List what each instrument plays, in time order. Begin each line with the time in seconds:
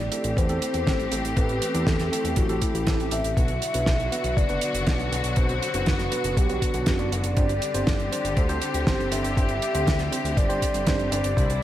Already playing: string section E3 A3 C4 G4, soft synth lead D5
0.00 analog synth bass A1
0.12 tine electric piano C4 E4 G4 A4, closed hi-hat
0.24 analog synth bass A1, closed hi-hat
0.37 analog synth bass E2, soft synth lead C5, kick, closed hi-hat
0.49 analog synth bass E2, tine electric piano C4 E4 G4 A4, closed hi-hat
0.62 closed hi-hat
0.74 analog synth bass E2, closed hi-hat
0.87 analog synth bass A1, tine electric piano C4 E4 G4 A4, kick, snare, closed hi-hat
0.99 analog synth bass A1, closed hi-hat
1.12 analog synth bass A1, tine electric piano C4 E4 G4 A4, closed hi-hat
1.25 analog synth bass A1, closed hi-hat
1.37 analog synth bass A1, tine electric piano C4 E4 G4 A4, soft synth lead B4, kick, closed hi-hat
1.49 analog synth bass A1, closed hi-hat
1.62 closed hi-hat
1.74 analog synth bass E2, tine electric piano C4 E4 G4 A4, closed hi-hat
1.87 analog synth bass E2, soft synth lead A4, kick, snare, closed hi-hat
1.99 analog synth bass E2, snare, closed hi-hat
2.12 tine electric piano C4 E4 G4 A4, closed hi-hat
2.24 analog synth bass E2, closed hi-hat
2.36 analog synth bass A1, soft synth lead F#4, kick, closed hi-hat
2.49 analog synth bass A1, tine electric piano C4 E4 G4 A4, closed hi-hat
2.62 soft synth lead E4, kick, closed hi-hat
2.74 analog synth bass A1, closed hi-hat
2.87 analog synth bass A1, tine electric piano C4 E4 G4 A4, kick, snare, closed hi-hat
2.99 analog synth bass A1, closed hi-hat
3.11 analog synth bass A1, tine electric piano C4 E4 G4 A4, soft synth lead E5, closed hi-hat
3.24 analog synth bass A1, closed hi-hat
3.37 analog synth bass B1, string section B2 D3 F#3 F#4, tine electric piano B3 D4 F#4 B4, kick, closed hi-hat
3.48 analog synth bass B1, closed hi-hat
3.62 closed hi-hat
3.74 analog synth bass B1, tine electric piano B3 D4 F#4 B4, closed hi-hat
3.86 analog synth bass B1, kick, snare, closed hi-hat
3.99 analog synth bass B1, closed hi-hat
4.12 tine electric piano B3 D4 F#4 B4, closed hi-hat
4.24 analog synth bass B1, closed hi-hat
4.37 analog synth bass F#1, soft synth lead D5, kick, closed hi-hat
4.49 analog synth bass F#1, tine electric piano B3 D4 F#4 B4, closed hi-hat
4.61 closed hi-hat
4.74 analog synth bass F#1, closed hi-hat
4.87 analog synth bass B1, tine electric piano B3 D4 F#4 B4, kick, snare, closed hi-hat
4.99 analog synth bass B1, closed hi-hat
5.12 analog synth bass B1, tine electric piano B3 D4 F#4 B4, closed hi-hat
5.24 analog synth bass B1, closed hi-hat
5.36 analog synth bass B1, tine electric piano B3 D4 F#4 B4, soft synth lead C5, kick, closed hi-hat
5.49 analog synth bass B1, closed hi-hat
5.62 closed hi-hat
5.74 analog synth bass F#1, tine electric piano B3 D4 F#4 B4, closed hi-hat
5.86 analog synth bass F#1, soft synth lead B4, kick, snare, closed hi-hat
5.99 analog synth bass F#1, snare, closed hi-hat
6.12 tine electric piano B3 D4 F#4 B4, closed hi-hat
6.24 analog synth bass F#1, closed hi-hat
6.37 analog synth bass B1, soft synth lead G4, kick, closed hi-hat
6.49 analog synth bass B1, tine electric piano B3 D4 F#4 B4, closed hi-hat
6.62 soft synth lead F#4, kick, closed hi-hat
6.74 analog synth bass B1, tine electric piano B3 D4 F#4 B4, closed hi-hat
6.86 analog synth bass F#1, kick, snare, closed hi-hat
6.99 analog synth bass F#1, tine electric piano B3 D4 F#4 D5, closed hi-hat
7.12 analog synth bass F#1, soft synth lead D5, closed hi-hat
7.24 analog synth bass F#1, closed hi-hat
7.37 analog synth bass G1, string section G3 C4 G4, tine electric piano C4 D4 G4 C5, kick, closed hi-hat
7.49 analog synth bass G1, closed hi-hat
7.62 closed hi-hat
7.74 analog synth bass G1, tine electric piano C4 D4 G4 C5, closed hi-hat
7.87 analog synth bass G1, kick, snare, closed hi-hat
7.99 analog synth bass G1, closed hi-hat
8.12 tine electric piano C4 D4 G4 C5, closed hi-hat
8.24 analog synth bass G1, closed hi-hat
8.37 analog synth bass D2, soft synth lead C5, kick, closed hi-hat
8.49 analog synth bass D2, tine electric piano C4 D4 G4 C5, closed hi-hat
8.62 closed hi-hat
8.74 analog synth bass D2, closed hi-hat
8.87 analog synth bass G1, tine electric piano C4 D4 G4 C5, kick, snare, closed hi-hat
8.99 analog synth bass G1, closed hi-hat
9.12 analog synth bass G1, tine electric piano C4 D4 G4 C5, soft synth lead E5, closed hi-hat
9.24 analog synth bass G1, closed hi-hat
9.37 analog synth bass G1, tine electric piano C4 D4 G4 C5, kick, closed hi-hat
9.49 analog synth bass G1, closed hi-hat
9.62 closed hi-hat
9.75 analog synth bass D2, tine electric piano C4 D4 G4 C5, closed hi-hat
9.87 analog synth bass D2, kick, snare, closed hi-hat
9.99 analog synth bass D2, snare, closed hi-hat
10.12 tine electric piano C4 D4 G4 C5, closed hi-hat
10.24 analog synth bass D2, closed hi-hat
10.37 analog synth bass G1, soft synth lead D5, kick, closed hi-hat
10.49 analog synth bass G1, tine electric piano C4 D4 G4 C5, closed hi-hat
10.62 kick, closed hi-hat
10.74 analog synth bass G1, closed hi-hat
10.87 analog synth bass G1, tine electric piano C4 D4 G4 C5, kick, snare, closed hi-hat
10.99 analog synth bass G1, closed hi-hat
11.12 analog synth bass G1, tine electric piano C4 D4 G4 C5, soft synth lead D5, closed hi-hat
11.24 analog synth bass G1, closed hi-hat
11.37 analog synth bass C2, tine electric piano D4 E4 G4 C5, string section E4, kick, closed hi-hat
11.49 analog synth bass C2, closed hi-hat